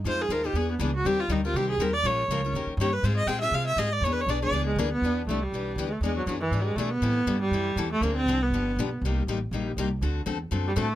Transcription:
0.04 upright bass F2, steel-string acoustic guitar F3 G#3 D#4 F4 C5, viola C5
0.22 viola G#4
0.29 upright bass D#2, steel-string acoustic guitar F3 G#3 D#4 F4 C5, viola A#4
0.44 steel-string acoustic guitar D#4 F4 C5, viola G4
0.53 upright bass E2, steel-string acoustic guitar E3 B3 D4 G#4, viola G#4
0.72 viola B3
0.79 upright bass C#2, steel-string acoustic guitar E3 B3 D4 G#4, viola D4
0.96 viola F#4
1.05 upright bass D#2, steel-string acoustic guitar D#3 G3 C4 G4 A#4, viola G4
1.20 viola F4
1.29 upright bass D2, steel-string acoustic guitar D#3 G3 C4 G4 A#4, viola D#4
1.45 steel-string acoustic guitar C4 G4 A#4, viola F4
1.54 upright bass C2, steel-string acoustic guitar D#3 G3 C4 G4 A#4, viola G4
1.71 viola G#4
1.78 upright bass D#2, steel-string acoustic guitar D#3 G3 C4 G4 A#4, viola A#4
1.93 viola D5
2.03 upright bass A#1, steel-string acoustic guitar F3 G#3 C#4 F4 A#4, viola C#5
2.28 upright bass C#2, steel-string acoustic guitar F3 G#3 C#4 F4 A#4
2.45 steel-string acoustic guitar C#4 F4 A#4
2.53 upright bass D#2, steel-string acoustic guitar D#3 A#3 C#4 G4 A#4
2.67 muted upright bass stroke
2.77 upright bass G2, steel-string acoustic guitar D#3 A#3 C#4
2.81 steel-string acoustic guitar G4 A#4, viola C#5
2.93 viola B4
3.03 upright bass G#2, steel-string acoustic guitar G#3 C4 F4 G#4, viola C5
3.17 viola D#5
3.26 upright bass A#2, steel-string acoustic guitar G#3 C4 F4 G#4, viola G5
3.41 steel-string acoustic guitar C4 F4 G#4, viola E5
3.51 upright bass C3, steel-string acoustic guitar G#3 C4 F4 G#4, viola F5
3.67 viola E5
3.76 upright bass G#2, steel-string acoustic guitar G#3 C4 F4 G#4, viola D#5
3.93 viola D5
4.01 upright bass E2, steel-string acoustic guitar E3 B3, viola C#5
4.06 steel-string acoustic guitar D4 G#4
4.12 viola B4
4.21 viola C#5
4.26 upright bass B1, steel-string acoustic guitar E3 B3 D4 G#4, viola D5
4.42 steel-string acoustic guitar B3 D4 G#4, viola D5
4.50 upright bass C#2, steel-string acoustic guitar E3 B3 D4 G#4
4.67 viola G#3
4.76 upright bass D2, steel-string acoustic guitar E3 B3 D4 G#4, viola A#3
4.92 viola B3
5.01 upright bass E2, steel-string acoustic guitar E3 B3 D4 G4
5.27 upright bass C2, steel-string acoustic guitar E3 B3 D4 G4, viola A3
5.43 viola G3
5.52 upright bass B1, steel-string acoustic guitar E3 B3 D4 G4
5.76 upright bass D2, steel-string acoustic guitar E3 B3 D4 G4
5.88 viola G#3 A3
6.01 upright bass E2, steel-string acoustic guitar E3 B3 D4, viola G#3
6.05 steel-string acoustic guitar G#4
6.17 viola F#3
6.26 upright bass F#2, steel-string acoustic guitar E3 B3 D4 G#4, viola F#3
6.40 viola E3
6.51 upright bass G#2, steel-string acoustic guitar E3 B3 D4 G#4
6.61 viola G3 G#3
6.76 upright bass B2, steel-string acoustic guitar E3 B3 D4 G#4, viola A3
6.90 viola B3
7.02 upright bass A2, steel-string acoustic guitar E3 G3 C4 E4 A4
7.26 upright bass G2, steel-string acoustic guitar E3 G3 C4 E4 A4
7.42 viola G3
7.51 upright bass F#2, steel-string acoustic guitar E3 G3 C4 E4 A4
7.76 upright bass E2, steel-string acoustic guitar E3 G3 C4 E4 A4
7.93 viola A3
8.01 upright bass D2, steel-string acoustic guitar D3 F3 C4 D4 G#4, viola A#3
8.17 viola C4
8.26 upright bass C2, steel-string acoustic guitar D3 F3 C4 D4 G#4
8.43 viola B3
8.50 upright bass G1, steel-string acoustic guitar D3 F3 B3
8.54 steel-string acoustic guitar D4 G4
8.76 upright bass B1, steel-string acoustic guitar D3 F3 B3 D4 G4
9.01 upright bass C2, steel-string acoustic guitar C3 G3 A#3
9.06 steel-string acoustic guitar D#4 G4
9.27 upright bass A1, steel-string acoustic guitar C3 G3 A#3 D#4 G4
9.51 upright bass A#1, steel-string acoustic guitar C3 G3 A#3 D#4 G4
9.77 upright bass C2, steel-string acoustic guitar C3 G3 A#3 D#4 G4
10.01 upright bass D2, steel-string acoustic guitar D3 A3 C4 F#4 A4
10.26 upright bass E2, steel-string acoustic guitar D3 A3 C4 F#4 A4
10.51 upright bass F#2, steel-string acoustic guitar D3 A3 C4 F#4 A4
10.68 viola G3
10.76 upright bass A2, steel-string acoustic guitar D3 A3 C4 F#4 A4, viola A3

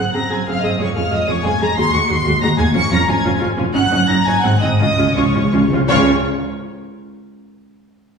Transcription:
Already playing: violin section F#5 F#6
0.14 double bass section F#1, cello section F#2, viola section C4 G#4, violin section A#5 A#6
0.30 double bass section F#1, cello section F#2, viola section C4 G#4, violin section G#5 G#6
0.47 double bass section F#1, cello section F#2, viola section C4 G#4, violin section F5 F6
0.62 double bass section F#1, cello section F#2, viola section C4 G#4, violin section D#5 D#6
0.79 double bass section F1, cello section F2, viola section G#3 G#4, violin section C#5 C#6
0.95 double bass section F1, cello section F2, viola section G#3 G#4, violin section F5 F6
1.11 double bass section F1, cello section F2, viola section G#3 G#4, violin section D#5 D#6
1.27 double bass section F1, cello section F2, viola section G#3 G#4, violin section C#5 C#6
1.44 double bass section F1, cello section F2, viola section G#3 G#4, violin section G#5 G#6
1.60 double bass section F1, cello section F2, viola section G#3 G#4, violin section A#5 A#6
1.76 double bass section D#2, cello section D#2, viola section G#3 F#4, violin section C6 C7
1.92 double bass section D#2, cello section D#2, viola section G#3 F#4, violin section C#6 C#7
2.08 double bass section D#2, cello section D#2, viola section G#3 F#4, violin section C6 C7
2.25 double bass section D#2, cello section D#2, viola section G#3 F#4
2.41 cello section D#2, double bass section D#2, viola section G#3 F#4, violin section A#5 A#6
2.58 double bass section D#2, cello section D#2, viola section G#3 F#4, violin section G#5 G#6
2.74 double bass section F1, cello section F2, viola section C#4 F4, violin section C#6 C#7
2.91 double bass section F1, cello section F2, viola section C#4 F4, violin section A#5 A#6
3.07 double bass section F1, cello section F2, viola section C#4 F4, violin section G#5 G#6
3.24 double bass section F1, cello section F2, viola section C#4 F4
3.39 double bass section F1, cello section F2, viola section C#4 F4
3.57 double bass section F1, cello section F2, viola section C#4 F4
3.73 double bass section F#1, cello section F#2, viola section C#4 D#4, violin section F#5 F#6
3.91 double bass section F#1, cello section F#2, viola section C#4 D#4
4.08 double bass section F#1, cello section F#2, viola section C#4 D#4, violin section A#5 A#6
4.25 double bass section F#1, cello section F#2, viola section C#4 D#4, violin section G#5 G#6
4.43 double bass section G#1, cello section G#2, viola section C4 D#4, violin section F#5 F#6
4.61 double bass section G#1, cello section G#2, viola section C4 D#4, violin section D#5 D#6
4.79 double bass section C#2, timpani C#3, cello section C#3, viola section C#4 F4, violin section D#5 D#6
4.88 timpani C#3
4.96 double bass section C#2, timpani C#3, cello section C#3, viola section C#4 F4
5.04 timpani C#3
5.12 double bass section C#2, timpani C#3, cello section C#3, viola section C#4 F4, violin section C#6
5.17 timpani C#3, violin section C#5
5.28 timpani C#3
5.33 double bass section C#2, cello section C#3, timpani C#3, viola section C#4 F4
5.44 timpani C#3
5.52 double bass section C#2, timpani C#3, cello section C#3, viola section C#4 F4
5.61 timpani C#3
5.70 double bass section C#2, timpani C#3, cello section C#3, viola section C#4 F4
5.78 timpani C#3
5.88 double bass section C#2, timpani C#3, cello section C#3, viola section C#4 F4, violin section C#5 C#6

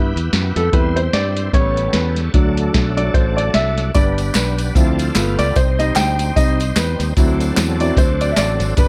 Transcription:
Already playing: fingered electric bass G2, grand piano G3 B3 E4, tonewheel organ B3 E4 G4 B4
0.16 fingered electric bass E2, closed hi-hat
0.33 fingered electric bass F#2, snare, closed hi-hat
0.56 fingered electric bass F2, grand piano A4, snare, closed hi-hat
0.72 fingered electric bass E2, grand piano G3 C4 E4 B4, tonewheel organ G3 C4 E4 C5, kick, closed hi-hat
0.96 grand piano C5, closed hi-hat
1.13 fingered electric bass G2, grand piano D5, snare, closed hi-hat
1.37 closed hi-hat
1.53 fingered electric bass A1, grand piano G3 B3 C#4 C#5, tonewheel organ G3 B3 C#4 A4, kick, snare, closed hi-hat
1.77 closed hi-hat
1.93 fingered electric bass E2, grand piano B4, snare, closed hi-hat
2.16 snare, closed hi-hat
2.34 fingered electric bass D2, grand piano F#3 A3 D4, tonewheel organ F#3 A3 D4 A4, kick, closed hi-hat
2.57 closed hi-hat
2.74 fingered electric bass B1, kick, snare, closed hi-hat
2.97 grand piano F#3 A3 D4 D5, closed hi-hat
3.14 fingered electric bass A1, grand piano C5, kick, snare, closed hi-hat
3.37 grand piano D5, closed hi-hat
3.54 fingered electric bass C2, grand piano E5, snare, closed hi-hat
3.78 snare, closed hi-hat
3.94 fingered electric bass G1, grand piano G3 B3 D4 D5, tonewheel organ G3 B3 D4 B4, kick, closed hi-hat, tambourine
4.18 closed hi-hat, tambourine
4.34 fingered electric bass B1, grand piano B4, snare, clap, closed hi-hat, tambourine
4.58 closed hi-hat, tambourine
4.75 fingered electric bass D2, tonewheel organ F3 C4 D4 A4, grand piano F3 C4 E4, kick, snare, closed hi-hat, tambourine
4.99 closed hi-hat, tambourine
5.15 fingered electric bass G1, tonewheel organ G3 B3 F4 A4, grand piano A3 B3 F4, snare, clap, closed hi-hat, tambourine
5.39 fingered electric bass C#2, grand piano D5, snare, closed hi-hat, tambourine
5.56 fingered electric bass C2, tonewheel organ G3 C4 D#4 C5, grand piano C5, kick, closed hi-hat, tambourine
5.79 grand piano G3 C4 D#4 D#5, closed hi-hat, tambourine
5.95 fingered electric bass D2, grand piano G5, snare, clap, closed hi-hat, tambourine
6.19 closed hi-hat, tambourine
6.36 fingered electric bass C2, grand piano G3 C4 D#4 D#5, kick, snare, closed hi-hat, tambourine
6.60 closed hi-hat, tambourine
6.76 fingered electric bass E2, grand piano B4, snare, clap, closed hi-hat, tambourine
7.00 fingered electric bass D#2, snare, closed hi-hat, tambourine
7.17 fingered electric bass D2, grand piano F#3 C4 E4, tonewheel organ F#3 C4 D4 A4, kick, closed hi-hat, tambourine
7.40 closed hi-hat, tambourine
7.57 fingered electric bass E2, snare, clap, closed hi-hat, tambourine
7.80 grand piano F#3 C4 E4 D5, closed hi-hat, tambourine
7.97 fingered electric bass D2, grand piano C5, kick, snare, closed hi-hat, tambourine
8.21 grand piano D5, closed hi-hat, tambourine
8.32 grand piano E5
8.36 fingered electric bass A1, grand piano D5, snare, clap, closed hi-hat, tambourine
8.60 fingered electric bass G#1, snare, closed hi-hat, tambourine
8.77 fingered electric bass G1, grand piano G3 B3 D4 B4, tonewheel organ G3 B3 D4 B4, kick, closed hi-hat, tambourine

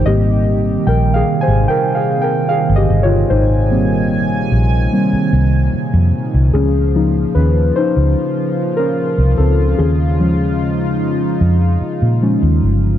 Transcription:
Already playing: analog synth pad D#3 G4
0.06 fingered electric bass G#1, analog synth pad A#2 C3, synth keys G3 A#3 C4 G4 D#5
0.87 fingered electric bass A#1, synth keys A#4 G5
1.14 synth keys G#4 F5
1.41 synth keys C5 G#5
1.48 fingered electric bass G#1
1.68 synth keys A#4 G5
1.95 synth keys G#4 F5
2.22 synth keys A#4 G5
2.49 synth keys G#4 F5
2.69 fingered electric bass G1
2.76 synth keys G4 D#5
2.90 fingered electric bass G1
3.03 synth keys F4 C#5
3.30 fingered electric bass G#1, synth keys D#4 C5, analog synth pad G#5
3.71 synth keys G3 A#3 C4
4.52 fingered electric bass A#1
4.93 synth keys G3 A#3 C4
5.13 muted fingered electric bass stroke
5.33 fingered electric bass C2
5.74 muted fingered electric bass stroke
5.94 fingered electric bass F2
6.34 fingered electric bass C2
6.54 fingered electric bass C#2, analog synth pad C#3 F3 F4, synth keys C#4 G#4
6.95 synth keys F3 A#3 D#4
7.35 fingered electric bass D#2, synth keys C#4 B4
7.76 synth keys D#4 C5
7.97 fingered electric bass C#2
8.77 synth keys C#4 A#4
9.18 fingered electric bass C2
9.38 fingered electric bass C#2, synth keys C4 A4
9.78 fingered electric bass D#2, synth keys C#4 G#4, analog synth pad D#4
10.19 synth keys F3 G#3 C#4
11.01 fingered electric bass F2
11.41 fingered electric bass F2
11.81 muted fingered electric bass stroke
12.02 fingered electric bass A#2
12.22 synth keys F3 G#3 C#4
12.43 fingered electric bass D#2
12.63 fingered electric bass G1

